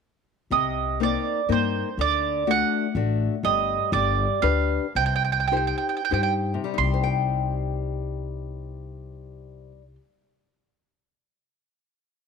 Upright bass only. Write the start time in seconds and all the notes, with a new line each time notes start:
0.50 C2
1.49 G2
1.98 D2
2.95 A1
3.43 G1
3.92 G1
4.43 D2
4.95 C2
6.12 G2
6.78 C2